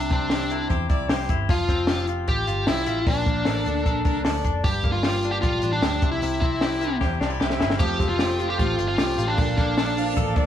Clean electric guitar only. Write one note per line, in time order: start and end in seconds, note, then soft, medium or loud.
0.00 1.49 C3 medium
0.00 0.31 G4 medium
0.12 1.54 C4 medium
0.31 0.70 G4 medium
0.51 0.88 E4 medium
0.71 1.09 G4 medium
0.90 1.29 E4 medium
1.10 1.53 G4 medium
1.30 1.53 E4 medium
1.49 4.68 F3 medium
1.69 3.11 C4 medium
1.89 2.27 G4 medium
2.09 2.47 F4 medium
2.28 2.66 G4 medium
2.47 2.86 F4 medium
2.67 3.11 G4 medium
2.87 3.66 F4 medium
3.07 4.65 A#2 medium
3.27 4.69 A#3 medium
3.46 3.85 A4 medium
3.66 4.04 D4 medium
3.86 4.24 A4 medium
4.05 4.44 D4 medium
4.26 4.69 A4 medium
4.45 4.69 D4 medium
4.65 6.07 G2 medium
4.85 6.07 A#3 medium
5.05 5.43 G4 medium
5.25 5.62 D4 medium
5.44 5.83 G4 medium
5.63 6.07 D4 medium
5.83 6.62 G4 medium
6.03 6.21 C3 medium
6.22 7.80 C3 medium
6.43 7.84 C4 medium
6.62 7.00 G4 medium
6.82 7.20 E4 medium
7.01 7.39 G4 medium
7.21 7.30 D4 medium
7.30 7.58 E4 medium
7.40 7.84 G4 medium
7.60 7.84 E4 medium
7.80 10.46 F3 medium
8.00 9.42 C4 medium
8.20 8.58 G4 medium
8.40 8.79 F4 medium
8.59 8.97 G4 medium
8.79 9.18 F4 medium
8.99 9.42 G4 medium
9.18 9.97 F4 medium
9.38 10.46 A#2 medium
9.58 10.46 A#3 medium
9.78 10.16 A4 medium
9.97 10.36 D4 medium
10.17 10.46 A4 medium
10.37 10.46 D4 medium